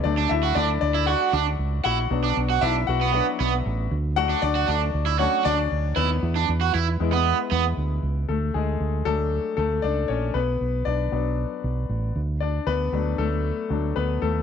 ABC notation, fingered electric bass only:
X:1
M:4/4
L:1/16
Q:1/4=116
K:Dlyd
V:1 name="Fingered electric bass" clef=bass
D,,2 D,,2 D,,2 D,,3 z D,,2 C,,2 _B,,,2 | B,,,2 B,,,2 B,,,2 B,,,3 z B,,,2 A,,,2 D,,2- | D,,2 D,,2 D,,2 D,,3 z D,,2 D,,2 _E,,2 | E,,2 E,,2 E,,2 E,,3 z E,,2 D,,2 C,,2 |
D,,2 D,,2 D,,2 D,,3 z D,,2 C,,2 _B,,,2 | B,,,2 B,,,2 B,,,2 B,,,3 z B,,,2 A,,,2 D,,2- | D,,2 D,,2 D,,2 D,,3 z D,,2 D,,2 _E,,2 |]